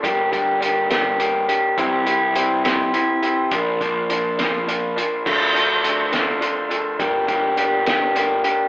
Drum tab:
CC |------|------|------|x-----|
HH |xxxxxx|xxxxxx|xxxxxx|-xxxxx|
SD |---o--|---o--|---o--|---o--|
BD |oo----|o-----|oo----|o-----|

CC |------|
HH |xxxxxx|
SD |---o--|
BD |oo----|